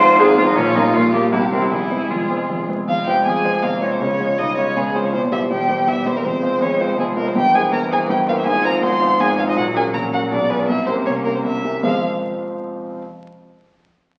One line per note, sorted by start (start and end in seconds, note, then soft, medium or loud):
0.00 0.20 G#1 medium
0.00 0.19 G#2 medium
0.00 0.38 F3 medium
0.00 0.20 F4 loud
0.00 0.38 F4 medium
0.00 0.17 C5 loud
0.00 0.20 C5 loud
0.00 0.39 C5 medium
0.19 0.38 G#1 medium
0.19 0.38 G#2 medium
0.19 0.40 C4 medium
0.19 1.30 F4 medium
0.19 0.37 G#4 loud
0.37 0.55 F3 medium
0.37 0.48 G#3 medium
0.37 0.47 F4 medium
0.37 0.55 F4 medium
0.37 0.55 C5 medium
0.48 0.52 G3 medium
0.48 0.58 D#4 medium
0.56 0.75 A#1 medium
0.56 0.75 A#2 medium
0.56 0.75 F3 medium
0.56 0.77 C#4 loud
0.75 0.92 G3 medium
0.75 0.83 G3 medium
0.75 0.95 D#4 medium
0.75 0.93 F4 medium
0.75 0.93 A#4 medium
0.94 1.13 A#1 medium
0.94 1.13 A#2 medium
0.94 1.12 A#3 medium
0.94 1.13 F4 loud
1.13 1.31 G3 soft
1.13 1.21 A#3 medium
1.13 1.31 F4 soft
1.13 1.32 G4 medium
1.13 1.31 A#4 soft
1.31 1.51 C2 medium
1.31 1.51 C3 medium
1.31 1.51 G3 medium
1.31 1.40 E4 medium
1.31 1.73 G4 medium
1.51 1.63 E3 medium
1.51 1.70 G3 soft
1.51 1.64 C4 medium
1.51 1.70 C#4 soft
1.51 1.70 A#4 soft
1.62 1.69 G3 medium
1.62 1.70 E4 medium
1.69 1.90 F1 soft
1.69 1.91 F2 medium
1.69 2.09 G3 medium
1.69 2.12 E4 medium
1.69 2.69 G#4 medium
1.90 2.08 G#3 soft
1.90 2.09 C4 soft
1.90 2.09 C5 soft
2.10 2.30 F1 soft
2.10 2.30 F2 soft
2.10 2.68 G#3 soft
2.10 2.69 F4 medium
2.30 2.48 G#3 soft
2.30 2.48 C4 soft
2.30 2.48 C5 soft
2.49 2.68 F1 soft
2.49 2.69 F2 soft
2.69 2.86 G#3 soft
2.69 2.86 C4 soft
2.69 2.87 C5 soft
2.88 3.06 F1 soft
2.88 3.07 F2 medium
2.88 3.27 G#3 soft
2.88 3.06 F4 medium
2.88 3.06 F5 medium
3.07 3.24 G#3 soft
3.07 3.24 F4 soft
3.07 3.16 G4 medium
3.07 3.24 C5 soft
3.07 3.25 G5 medium
3.25 3.44 F1 soft
3.25 3.44 F2 soft
3.25 3.45 G3 soft
3.25 3.65 G#4 medium
3.25 3.64 G#5 medium
3.44 3.64 F3 medium
3.44 3.61 G#3 soft
3.44 3.61 F4 soft
3.44 3.62 C5 soft
3.62 3.81 F1 soft
3.62 3.81 F2 soft
3.62 4.02 A#3 soft
3.62 3.82 F4 medium
3.62 3.81 F5 medium
3.81 3.98 G#3 soft
3.81 3.86 C#4 medium
3.81 3.99 F4 soft
3.81 3.99 C5 soft
3.81 3.94 C#5 medium
3.91 4.00 C4 soft
3.91 4.01 C5 medium
4.00 4.19 C#2 soft
4.00 4.19 C#3 soft
4.00 4.40 G#3 soft
4.00 4.38 C#4 medium
4.00 4.40 C#5 medium
4.20 4.37 G#3 soft
4.20 4.37 F4 soft
4.20 4.37 C#5 soft
4.38 4.57 C#2 soft
4.38 4.57 C#3 soft
4.38 4.75 G3 soft
4.38 4.47 D#4 medium
4.38 4.57 D#5 medium
4.58 4.74 G#3 soft
4.58 4.78 C#4 medium
4.58 4.75 F4 soft
4.58 4.78 C#5 medium
4.58 4.75 C#5 soft
4.76 4.94 C#2 soft
4.76 4.94 C#3 medium
4.76 5.85 F3 soft
4.76 4.97 G#3 medium
4.76 4.96 G#4 medium
4.95 5.11 G#3 soft
4.95 5.07 C4 medium
4.95 5.12 F4 soft
4.95 5.07 C5 medium
4.95 5.12 C#5 soft
5.05 5.14 C#4 soft
5.05 5.13 C#5 medium
5.13 5.31 E1 soft
5.13 5.31 E2 soft
5.13 5.22 C4 medium
5.13 5.21 C5 medium
5.32 5.48 G3 soft
5.32 5.40 E4 medium
5.32 5.49 G4 soft
5.32 5.49 C5 soft
5.32 5.39 E5 medium
5.50 5.68 E1 soft
5.50 5.68 E2 soft
5.50 5.89 G4 medium
5.50 5.89 G5 medium
5.69 5.85 G3 soft
5.69 5.86 G4 soft
5.69 5.86 C5 soft
5.87 6.05 E1 soft
5.87 6.05 E2 soft
5.87 6.24 G3 soft
5.87 6.08 E4 medium
5.87 6.08 E5 medium
6.06 6.23 G3 soft
6.06 6.15 C4 medium
6.06 6.23 G4 soft
6.06 6.23 C5 soft
6.06 6.18 C5 medium
6.16 6.24 A#3 medium
6.16 6.27 A#4 medium
6.24 6.42 F1 soft
6.24 6.42 F2 soft
6.24 6.97 G#3 medium
6.24 6.63 C4 medium
6.24 6.64 C5 medium
6.42 6.59 G#3 soft
6.42 6.60 F4 soft
6.42 6.60 C5 soft
6.61 6.79 F1 soft
6.61 6.79 F2 soft
6.61 6.82 C#4 medium
6.61 6.82 C#5 medium
6.80 6.97 G#3 soft
6.80 7.01 C4 medium
6.80 6.97 F4 soft
6.80 6.99 C5 medium
6.80 6.97 C5 soft
6.98 7.16 F1 medium
6.98 7.16 F2 medium
6.98 7.35 F3 soft
6.98 7.17 G#3 medium
6.98 7.07 G#4 medium
7.16 7.33 G#3 soft
7.16 7.21 A#3 medium
7.16 7.33 F4 soft
7.16 7.29 A#4 medium
7.16 7.34 C5 soft
7.25 7.29 C4 medium
7.25 7.35 C5 medium
7.35 7.53 G1 soft
7.35 7.53 G2 medium
7.35 8.48 E3 medium
7.35 7.43 G4 medium
7.35 7.57 G5 medium
7.54 7.71 A#3 soft
7.54 7.71 E4 soft
7.54 7.73 G#4 medium
7.54 7.71 C5 soft
7.54 7.73 G#5 medium
7.71 7.91 G1 medium
7.71 7.90 G2 soft
7.71 7.93 A#4 medium
7.71 7.80 A#5 medium
7.91 8.08 A#3 soft
7.91 8.08 E4 soft
7.91 8.10 G#4 medium
7.91 8.08 C5 soft
7.91 7.99 G#5 medium
8.09 8.27 G1 medium
8.09 8.27 G2 medium
8.09 8.28 G4 medium
8.09 8.17 G5 medium
8.27 8.44 A#3 soft
8.27 8.45 E4 soft
8.27 8.37 F4 medium
8.27 8.45 C5 medium
8.27 8.32 F5 medium
8.35 8.45 E4 medium
8.35 8.46 E5 medium
8.45 8.64 G#1 soft
8.45 8.64 G#2 soft
8.45 9.57 F3 medium
8.45 8.65 G#4 medium
8.45 8.64 G#5 medium
8.63 8.81 C4 soft
8.63 8.81 F4 soft
8.63 8.84 A#4 medium
8.63 8.81 C5 soft
8.63 8.73 A#5 medium
8.82 9.01 G#1 medium
8.82 9.01 G#2 soft
8.82 9.19 C5 medium
8.82 9.22 C6 medium
9.01 9.18 C4 soft
9.01 9.18 F4 soft
9.01 9.19 C5 soft
9.19 9.38 G#1 medium
9.19 9.38 G#2 medium
9.19 9.37 G#4 medium
9.19 9.39 G#5 medium
9.38 9.55 C4 soft
9.38 9.42 F4 medium
9.38 9.55 F4 soft
9.38 9.56 C5 soft
9.38 9.43 F5 medium
9.46 9.50 D#4 medium
9.46 9.57 D#5 medium
9.55 9.75 A#1 soft
9.55 9.75 A#2 soft
9.55 10.33 F#3 medium
9.55 9.76 F#4 medium
9.55 9.65 F#5 medium
9.75 9.93 C#4 soft
9.75 9.93 F#4 soft
9.75 9.92 G#4 medium
9.75 9.93 A#4 soft
9.75 9.84 G#5 medium
9.93 10.12 A#1 soft
9.93 10.12 A#2 soft
9.93 10.01 A#4 medium
9.93 10.01 A#5 medium
10.13 10.29 C#4 soft
10.13 10.31 F#4 medium
10.13 10.30 F#4 soft
10.13 10.30 A#4 soft
10.13 10.20 F#5 medium
10.31 10.50 B1 medium
10.31 10.50 B2 soft
10.31 10.71 G#3 soft
10.31 10.40 D4 medium
10.31 10.52 D5 medium
10.50 10.67 B3 soft
10.50 10.62 B3 medium
10.50 10.67 F4 soft
10.50 10.67 G#4 soft
10.50 10.61 B4 medium
10.60 10.71 D4 medium
10.60 10.67 D5 medium
10.68 10.87 C2 soft
10.68 10.87 C3 soft
10.68 11.65 A#3 medium
10.68 10.89 E4 medium
10.68 10.86 E5 medium
10.86 11.05 A#3 soft
10.86 11.06 C4 medium
10.86 11.05 C#4 soft
10.86 11.05 G4 soft
10.86 10.94 C5 medium
11.06 11.25 C2 soft
11.06 11.25 C3 soft
11.06 11.27 C#4 medium
11.06 11.13 C#5 medium
11.25 11.43 A#3 soft
11.25 11.36 A#3 medium
11.25 11.44 C#4 soft
11.25 11.44 G4 soft
11.25 11.34 A#4 medium
11.34 11.44 C4 soft
11.34 11.39 C5 medium
11.44 11.64 C2 soft
11.44 11.64 C3 soft
11.44 11.83 E4 soft
11.44 11.83 E5 medium
11.64 11.82 A#3 soft
11.64 11.82 C#4 soft
11.64 11.82 G4 soft
11.83 12.05 F2 soft
11.83 12.05 F3 soft
11.83 12.06 F3 medium
11.83 12.05 G#3 soft
11.83 12.06 G#3 soft
11.83 12.05 C4 soft
11.83 12.05 F4 soft
11.83 12.05 C5 soft
11.83 12.05 F5 medium